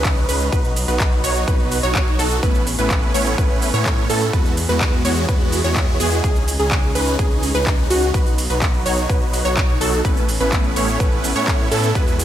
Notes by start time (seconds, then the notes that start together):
Already playing: C#2 C#3 C#4 D#4 G#4 B4
0.05 kick, clap, closed hi-hat, ride, shaker
0.17 closed hi-hat
0.29 C#2 C#4 D#4 B4, open hi-hat, ride, shaker
0.41 closed hi-hat, shaker
0.52 B1 F#3 B3 D#4 F#4 B4, kick, closed hi-hat, ride, shaker
0.65 closed hi-hat, shaker
0.76 open hi-hat, ride, shaker
0.88 B1 D#4 F#4 B4, closed hi-hat, shaker
1.00 kick, clap, closed hi-hat, ride, shaker
1.12 closed hi-hat
1.24 B1 D#4 F#4 C#5, open hi-hat, ride, shaker
1.36 closed hi-hat, shaker
1.48 B1 D#4 F#4 B4, kick, closed hi-hat, ride, shaker
1.60 closed hi-hat
1.72 open hi-hat, ride, shaker
1.83 B1 D#4 F#4 C#5, closed hi-hat, shaker
1.95 kick, clap, closed hi-hat, ride, shaker
2.07 closed hi-hat
2.19 B1 D#4 F#4 A4, open hi-hat, ride, shaker
2.31 closed hi-hat, shaker
2.43 A1 A3 B3 C#4 E4 B4, kick, closed hi-hat, ride, shaker
2.55 closed hi-hat, shaker
2.67 open hi-hat, ride, shaker
2.78 A1 A3 B3 C#4 E4 B4, closed hi-hat, shaker
2.91 kick, clap, closed hi-hat, ride, shaker
3.03 closed hi-hat
3.14 A1 A3 B3 C#4 E4 C#5, open hi-hat, ride, shaker
3.27 closed hi-hat, shaker
3.38 A1 A3 B3 C#4 E4 B4, kick, closed hi-hat, ride, shaker
3.50 closed hi-hat
3.62 open hi-hat, ride, shaker
3.74 A2 A3 B3 C#4 E4 C#5, closed hi-hat, shaker
3.86 kick, clap, closed hi-hat, ride, shaker
3.98 closed hi-hat
4.09 A2 A3 B3 C#4 E4 A4, open hi-hat, ride, shaker
4.22 closed hi-hat, shaker
4.33 E2 E3 G#3 B3 E4 F#4 G#4 B4, kick, closed hi-hat, ride, shaker
4.45 closed hi-hat, shaker
4.57 open hi-hat, ride, shaker
4.69 E2 G#3 B3 E4 F#4 B4, closed hi-hat, shaker
4.81 kick, clap, closed hi-hat, ride, shaker
4.93 closed hi-hat
5.05 E2 G#3 B3 E4 F#4 C#5, open hi-hat, ride, shaker
5.17 closed hi-hat, shaker
5.29 E2 G#3 B3 E4 F#4 B4, kick, closed hi-hat, ride, shaker
5.41 closed hi-hat
5.52 open hi-hat, ride, shaker
5.64 E2 G#3 B3 E4 F#4 C#5, closed hi-hat, shaker
5.76 kick, clap, closed hi-hat, ride, shaker
5.88 closed hi-hat
6.00 E2 G#3 B3 E4 F#4 G#4, open hi-hat, ride, shaker
6.12 closed hi-hat, shaker
6.24 C#2 C#3 C#4 D#4 G#4, kick, closed hi-hat, ride, shaker
6.36 closed hi-hat, shaker
6.48 open hi-hat, ride, shaker
6.59 C#2 C#4 D#4 G#4, shaker
6.71 kick, clap, closed hi-hat, ride, shaker
6.83 closed hi-hat
6.95 C#2 C#4 D#4 B4, open hi-hat, ride, shaker
7.07 closed hi-hat, shaker
7.19 C#2 C#4 D#4 G#4, kick, closed hi-hat, ride, shaker
7.31 closed hi-hat
7.43 open hi-hat, ride, shaker
7.55 C#2 C#4 D#4 B4, closed hi-hat, shaker
7.67 kick, clap, closed hi-hat, ride, shaker
7.79 closed hi-hat
7.90 C#2 C#4 D#4 F#4, open hi-hat, ride, shaker
8.02 closed hi-hat, shaker
8.14 B1 F#3 B3 D#4 B4, kick, closed hi-hat, ride, shaker
8.26 closed hi-hat, shaker
8.38 open hi-hat, ride, shaker
8.50 B1 D#4 F#4 B4, closed hi-hat, shaker
8.62 kick, clap, closed hi-hat, ride, shaker
8.74 closed hi-hat
8.86 B1 D#4 F#4 C#5, open hi-hat, ride, shaker
8.98 closed hi-hat, shaker
9.09 B1 D#4 F#4 B4, kick, closed hi-hat, ride, shaker
9.22 closed hi-hat
9.33 open hi-hat, ride, shaker
9.45 B1 D#4 F#4 C#5, closed hi-hat, shaker
9.57 kick, clap, closed hi-hat, ride, shaker
9.69 closed hi-hat
9.81 B1 D#4 F#4 A4, open hi-hat, ride, shaker
9.93 closed hi-hat, shaker
10.05 A1 A3 B3 C#4 E4 B4, kick, closed hi-hat, ride, shaker
10.17 closed hi-hat, shaker
10.29 open hi-hat, ride, shaker
10.40 A1 A3 B3 C#4 E4 B4, closed hi-hat, shaker
10.52 kick, clap, closed hi-hat, ride, shaker
10.64 closed hi-hat
10.76 A1 A3 B3 C#4 E4 C#5, open hi-hat, ride, shaker
10.88 closed hi-hat, shaker
11.00 A1 A3 B3 E4 B4, kick, closed hi-hat, ride, shaker
11.12 closed hi-hat
11.24 open hi-hat, ride, shaker
11.36 A2 A3 B3 C#4 E4 C#5, closed hi-hat, shaker
11.48 kick, clap, closed hi-hat, ride, shaker
11.60 closed hi-hat
11.71 A2 A3 B3 C#4 E4 A4, open hi-hat, ride, shaker
11.84 closed hi-hat, shaker
11.95 E2 E3 G#3 B3 E4 F#4 G#4 B4, kick, closed hi-hat, ride, shaker
12.07 closed hi-hat, shaker
12.19 open hi-hat, ride, shaker